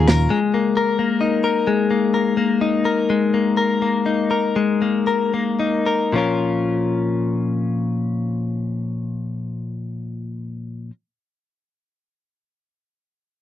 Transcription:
0.00 0.27 D#2 medium
0.00 0.29 A#2 medium
0.00 0.25 C#3 medium
0.00 0.25 F3 medium
0.00 0.25 A#3 medium
0.00 0.39 C#4 medium
0.00 0.25 F4 medium
0.00 0.39 F4 medium
0.08 0.39 A#4 medium
0.08 snare medium
0.30 1.66 G#3 medium
0.54 0.99 A#3 soft
0.77 1.43 A#4 medium
0.99 1.90 A#3 soft
1.21 2.60 D#4 soft
1.44 2.14 A#4 soft
1.67 3.09 G#3 medium
1.91 2.37 A#3 soft
2.14 2.85 A#4 soft
2.37 3.33 A#3 soft
2.61 4.05 D#4 soft
2.85 3.57 A#4 soft
3.10 4.55 G#3 medium
3.34 3.82 A#3 soft
3.57 4.30 A#4 soft
3.82 4.81 A#3 soft
4.06 5.58 D#4 soft
4.31 5.07 A#4 soft
4.56 6.13 G#3 medium
4.82 5.33 A#3 soft
5.07 5.86 A#4 soft
5.34 6.15 A#3 soft
5.59 6.16 D#4 soft
5.86 6.17 A#4 soft
6.13 10.90 A#2 soft
6.13 10.90 F3 soft
6.13 10.91 C#4 soft
6.13 10.92 F4 soft
6.18 10.92 A#4 soft

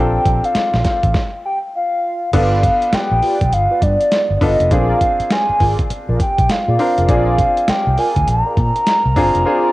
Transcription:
0.00 0.17 A#1 loud
0.00 1.17 C4 medium
0.00 1.17 D4 medium
0.00 1.17 F4 medium
0.00 1.16 A4 medium
0.00 0.47 G5 loud
0.26 0.39 A#1 medium
0.26 kick loud
0.26 closed hi-hat medium
0.44 1.45 F5 medium
0.44 closed hi-hat soft
0.55 muted fingered electric bass stroke soft
0.55 snare loud
0.55 closed hi-hat medium
0.74 0.82 A#1 medium
0.74 snare medium
0.85 kick medium
0.85 snare medium
0.85 closed hi-hat medium
1.03 1.11 A1 medium
1.03 kick medium
1.03 closed hi-hat soft
1.14 kick loud
1.14 snare medium
1.45 1.59 G5 medium
1.75 2.30 F5 medium
2.33 2.68 G1 loud
2.33 3.44 B3 medium
2.33 3.44 D4 medium
2.33 2.61 F4 loud
2.33 3.44 F4 medium
2.33 2.61 G4 medium
2.33 3.45 A4 medium
2.33 2.61 B4 medium
2.33 2.61 D5 loud
2.33 2.96 F5 loud
2.33 kick loud
2.33 closed hi-hat medium
2.33 crash medium
2.63 kick loud
2.63 closed hi-hat medium
2.82 closed hi-hat soft
2.93 3.55 G5 loud
2.93 muted fingered electric bass stroke soft
2.93 snare loud
2.93 closed hi-hat medium
3.11 3.19 A#1 loud
3.22 3.39 F4 medium
3.22 3.39 G4 medium
3.22 3.39 B4 medium
3.22 3.39 D5 medium
3.22 open hi-hat medium
3.41 3.49 B1 medium
3.41 kick medium
3.41 closed hi-hat soft
3.52 3.66 G1 medium
3.52 3.85 F5 loud
3.52 closed hi-hat medium
3.70 3.81 F4 medium
3.70 3.81 G4 medium
3.70 3.81 B4 medium
3.70 3.81 D5 medium
3.82 3.95 G2 medium
3.82 4.37 D5 loud
3.82 kick loud
3.82 closed hi-hat medium
4.01 closed hi-hat medium
4.12 snare loud
4.12 closed hi-hat medium
4.30 4.38 G1 medium
4.37 4.55 G1 loud
4.37 4.69 B3 medium
4.37 4.44 D5 medium
4.37 kick medium
4.41 4.69 D4 medium
4.41 4.69 F4 medium
4.41 4.70 A4 medium
4.41 4.72 D#5 loud
4.41 open hi-hat medium
4.60 4.68 F1 medium
4.60 closed hi-hat medium
4.71 4.93 A#1 loud
4.71 5.82 C4 medium
4.71 5.82 D4 medium
4.71 4.99 F4 loud
4.71 5.82 F4 medium
4.71 4.99 G#4 medium
4.71 5.82 G#4 medium
4.71 4.99 A#4 medium
4.71 4.99 D5 loud
4.71 5.33 F5 loud
4.71 kick loud
4.71 closed hi-hat medium
5.01 kick loud
5.01 closed hi-hat medium
5.20 muted fingered electric bass stroke soft
5.20 closed hi-hat soft
5.30 5.90 G#5 loud
5.30 snare loud
5.30 closed hi-hat medium
5.49 muted fingered electric bass stroke soft
5.60 5.74 G#1 medium
5.60 5.77 F4 medium
5.60 5.77 G#4 medium
5.60 5.77 A#4 medium
5.60 5.77 D5 medium
5.60 kick medium
5.60 open hi-hat medium
5.79 kick medium
5.79 closed hi-hat soft
5.90 muted fingered electric bass stroke medium
5.90 closed hi-hat medium
6.08 6.17 A#1 medium
6.08 6.18 F4 medium
6.08 6.18 G#4 medium
6.08 6.19 A#4 medium
6.08 6.19 D5 medium
6.20 6.52 G5 medium
6.20 kick medium
6.20 closed hi-hat medium
6.38 6.46 A#1 medium
6.38 kick medium
6.38 closed hi-hat medium
6.49 7.09 F5 medium
6.49 snare loud
6.49 closed hi-hat medium
6.67 6.76 A#2 medium
6.67 6.78 F4 medium
6.67 6.78 G#4 medium
6.67 6.78 A#4 medium
6.67 6.78 D5 medium
6.79 7.07 C4 medium
6.79 7.07 D4 medium
6.79 7.07 F4 medium
6.79 7.07 A#4 medium
6.79 open hi-hat medium
6.97 7.06 F1 loud
6.97 7.07 F4 medium
6.97 7.07 G#4 medium
6.97 7.08 A#4 medium
6.97 7.08 D5 medium
6.97 closed hi-hat medium
7.08 7.44 A#1 loud
7.08 8.19 C4 medium
7.08 8.20 D4 medium
7.08 7.36 F4 loud
7.08 8.20 F4 medium
7.08 7.36 G#4 medium
7.08 8.20 G#4 medium
7.08 7.37 A#4 medium
7.08 7.37 D5 loud
7.08 7.71 F5 loud
7.08 kick loud
7.08 closed hi-hat medium
7.38 kick loud
7.38 closed hi-hat medium
7.57 closed hi-hat soft
7.68 7.94 G5 loud
7.68 muted fingered electric bass stroke medium
7.68 snare loud
7.68 closed hi-hat medium
7.87 7.95 C2 medium
7.94 8.14 F4 medium
7.94 8.15 G#4 medium
7.94 8.15 A#4 medium
7.94 8.15 D5 medium
7.94 8.01 G5 medium
7.94 open hi-hat medium
7.99 8.30 G#5 medium
8.16 8.24 D2 medium
8.16 kick medium
8.16 closed hi-hat soft
8.28 8.41 A#1 loud
8.28 9.72 A#5 loud
8.28 closed hi-hat medium
8.46 8.56 F4 medium
8.46 8.56 G#4 medium
8.46 8.56 A#4 medium
8.46 8.56 D5 medium
8.57 8.71 A#2 loud
8.57 kick loud
8.57 closed hi-hat medium
8.76 closed hi-hat soft
8.87 snare loud
8.87 closed hi-hat medium
9.06 9.14 C2 medium
9.16 9.30 G1 loud
9.16 9.44 C4 medium
9.16 9.44 D4 medium
9.16 9.45 F4 medium
9.16 9.45 G#4 medium
9.16 kick medium
9.16 open hi-hat medium
9.35 9.43 F1 medium
9.35 closed hi-hat medium
9.46 9.72 C4 medium
9.46 9.72 D4 medium
9.46 9.72 F4 medium
9.46 9.72 G#4 medium
9.46 9.72 G#4 loud
9.46 9.72 A#4 medium
9.46 9.72 D5 loud

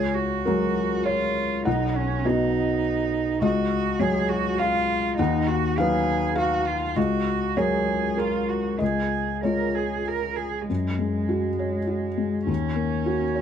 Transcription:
0.00 0.44 C#2 soft
0.00 0.16 G#4 medium
0.00 0.41 C#5 medium
0.14 1.07 F#4 medium
0.46 1.63 F#3 soft
0.46 1.63 G#3 soft
0.46 1.01 A#4 medium
1.05 1.65 F4 medium
1.05 1.62 C#5 medium
1.65 2.24 B1 medium
1.65 1.98 D#4 medium
1.65 2.79 F#5 medium
1.96 2.28 C#4 medium
2.25 3.38 B3 soft
2.25 3.42 D#4 medium
2.25 3.38 F#4 soft
2.25 3.38 D#5 medium
3.41 3.98 C#2 medium
3.41 4.01 F#4 medium
3.41 3.96 D#5 medium
3.99 5.14 F#3 medium
3.99 5.14 G#3 medium
3.99 4.30 G#4 medium
3.99 5.15 C#5 medium
4.29 4.59 F#4 medium
4.58 5.16 F4 medium
4.58 5.15 F5 medium
5.17 5.76 D#2 medium
5.17 5.48 D#4 medium
5.17 5.74 F#5 medium
5.47 5.79 F#4 medium
5.78 6.93 F#3 medium
5.78 6.93 D#4 soft
5.78 6.37 G#4 medium
5.78 6.93 B4 medium
5.78 6.33 F5 medium
6.35 6.68 F#4 medium
6.35 6.92 F5 medium
6.67 6.98 F4 medium
6.96 7.54 C#2 medium
6.96 7.59 F#4 medium
6.96 7.52 D#5 medium
7.57 8.77 F#3 soft
7.57 8.77 G#3 soft
7.57 8.20 G#4 medium
7.57 8.16 A#4 soft
7.57 8.14 C#5 medium
8.17 8.50 F4 medium
8.17 8.76 A#4 medium
8.49 8.80 F#4 soft
8.79 9.42 C#2 soft
8.79 9.37 G#4 soft
8.79 9.38 D#5 medium
9.43 10.65 G#3 soft
9.43 10.65 F4 soft
9.43 9.76 A#4 medium
9.43 10.02 C#5 soft
9.43 10.66 D#5 soft
9.75 10.09 G#4 soft
10.08 10.38 A#4 medium
10.36 10.68 G#4 soft
10.69 12.45 F#2 soft
10.69 12.44 G#3 soft
10.99 11.47 G#3 soft
11.29 11.77 F#4 soft
11.59 12.07 C#5 soft
11.87 12.36 F#4 soft
12.18 12.48 G#3 soft
12.47 13.41 D#2 soft
12.47 13.41 C#4 soft
12.76 13.24 A#3 soft
13.06 13.41 F#4 soft
13.35 13.41 C#5 soft

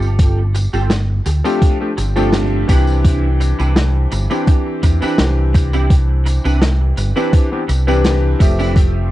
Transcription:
0.00 0.66 G1 loud
0.00 0.41 C4 medium
0.00 0.41 F4 medium
0.00 0.41 G4 medium
0.00 0.41 A4 loud
0.00 tambourine soft
0.19 kick loud
0.19 closed hi-hat loud
0.19 tambourine soft
0.54 muted clean electric guitar stroke medium
0.54 closed hi-hat medium
0.54 tambourine medium
0.73 1.19 G1 medium
0.73 0.90 C4 medium
0.73 0.90 F4 medium
0.73 0.90 G4 medium
0.73 0.90 A4 medium
0.73 tambourine soft
0.90 snare loud
0.90 closed hi-hat medium
0.90 tambourine soft
1.26 1.40 D2 loud
1.26 muted clean electric guitar stroke medium
1.26 closed hi-hat medium
1.26 tambourine medium
1.44 1.76 F3 medium
1.44 1.76 A3 medium
1.44 1.76 C4 medium
1.44 1.62 C4 medium
1.44 1.76 D4 medium
1.44 1.62 F4 medium
1.44 1.62 G4 medium
1.44 1.76 G4 loud
1.44 1.62 A4 medium
1.44 tambourine soft
1.62 kick loud
1.62 closed hi-hat medium
1.62 tambourine soft
1.80 1.89 F3 medium
1.80 1.90 A3 medium
1.80 1.90 C4 medium
1.80 1.90 D4 medium
1.80 1.90 G4 medium
1.97 2.62 G1 medium
1.97 muted clean electric guitar stroke loud
1.97 closed hi-hat medium
1.97 tambourine medium
2.16 2.65 F3 medium
2.16 2.65 A3 medium
2.16 2.65 C4 medium
2.16 2.33 C4 medium
2.16 2.65 D4 medium
2.16 2.33 F4 medium
2.16 2.33 G4 medium
2.16 2.65 G4 loud
2.16 2.33 A4 loud
2.16 tambourine soft
2.33 snare loud
2.33 closed hi-hat medium
2.33 tambourine soft
2.68 3.51 C2 loud
2.68 4.25 E3 medium
2.68 4.26 C4 medium
2.68 3.27 C4 medium
2.68 3.27 D4 medium
2.68 4.26 D4 medium
2.68 3.27 E4 medium
2.68 4.27 G4 medium
2.68 3.27 B4 loud
2.68 kick loud
2.68 closed hi-hat medium
2.68 tambourine medium
2.87 tambourine soft
3.05 kick loud
3.05 closed hi-hat loud
3.05 tambourine soft
3.40 muted clean electric guitar stroke medium
3.40 closed hi-hat medium
3.40 tambourine medium
3.59 4.05 C2 loud
3.59 3.76 C4 medium
3.59 3.76 D4 medium
3.59 3.76 E4 medium
3.59 3.76 B4 medium
3.59 tambourine soft
3.76 snare loud
3.76 closed hi-hat medium
3.76 tambourine soft
4.12 4.26 G1 loud
4.12 muted clean electric guitar stroke medium
4.12 closed hi-hat medium
4.12 tambourine medium
4.30 4.97 E3 medium
4.30 4.98 C4 medium
4.30 4.47 C4 medium
4.30 4.47 D4 medium
4.30 4.98 D4 medium
4.30 4.47 E4 medium
4.30 4.48 G4 medium
4.30 4.98 G4 medium
4.30 tambourine soft
4.47 kick loud
4.47 closed hi-hat loud
4.47 tambourine soft
4.83 4.97 E2 medium
4.83 muted clean electric guitar stroke medium
4.83 kick medium
4.83 closed hi-hat medium
4.83 tambourine medium
5.01 7.11 E3 medium
5.01 7.12 C4 medium
5.01 5.19 C4 medium
5.01 5.19 D4 medium
5.01 7.12 D4 medium
5.01 5.19 E4 medium
5.01 7.13 G4 medium
5.01 5.19 B4 loud
5.01 muted fingered electric bass stroke soft
5.01 tambourine soft
5.18 6.37 C2 loud
5.18 snare loud
5.18 closed hi-hat medium
5.18 tambourine soft
5.54 muted clean electric guitar stroke medium
5.54 kick loud
5.54 closed hi-hat medium
5.54 tambourine medium
5.73 5.90 C4 medium
5.73 5.90 D4 medium
5.73 5.90 E4 medium
5.73 5.91 G4 medium
5.73 tambourine soft
5.90 kick loud
5.90 closed hi-hat medium
5.90 tambourine soft
6.26 muted clean electric guitar stroke medium
6.26 closed hi-hat medium
6.26 tambourine medium
6.44 6.91 C2 medium
6.44 6.62 C4 medium
6.44 6.62 D4 medium
6.44 6.62 E4 medium
6.44 6.62 B4 medium
6.44 tambourine soft
6.62 snare loud
6.62 closed hi-hat medium
6.62 tambourine soft
6.97 7.11 G1 loud
6.97 muted clean electric guitar stroke loud
6.97 closed hi-hat medium
6.97 tambourine medium
7.16 7.47 E3 medium
7.16 7.48 C4 medium
7.16 7.33 C4 medium
7.16 7.33 D4 medium
7.16 7.48 D4 medium
7.16 7.33 E4 medium
7.16 7.48 G4 loud
7.16 7.47 B4 medium
7.16 7.33 B4 medium
7.16 tambourine soft
7.33 kick loud
7.33 closed hi-hat medium
7.33 tambourine soft
7.51 7.61 E3 medium
7.51 7.61 B3 medium
7.51 7.61 C4 medium
7.51 7.61 D4 medium
7.51 7.62 G4 medium
7.68 8.33 C2 medium
7.68 muted clean electric guitar stroke medium
7.68 closed hi-hat medium
7.68 tambourine medium
7.87 8.36 E3 medium
7.87 8.36 C4 medium
7.87 8.04 C4 medium
7.87 8.04 D4 medium
7.87 8.37 D4 medium
7.87 8.05 E4 medium
7.87 8.37 G4 loud
7.87 8.36 B4 medium
7.87 8.05 B4 medium
7.87 tambourine soft
8.04 snare loud
8.04 closed hi-hat medium
8.04 tambourine soft
8.39 9.11 F1 loud
8.39 9.11 F3 medium
8.39 9.11 A3 medium
8.39 9.11 C4 medium
8.39 9.11 G4 medium
8.39 9.11 E5 medium
8.39 muted clean electric guitar stroke medium
8.39 kick loud
8.39 closed hi-hat medium
8.39 tambourine medium
8.59 8.76 C4 medium
8.59 8.76 D4 medium
8.59 8.76 E4 medium
8.59 8.76 B4 medium
8.59 tambourine soft
8.76 kick loud
8.76 closed hi-hat medium
8.76 tambourine soft

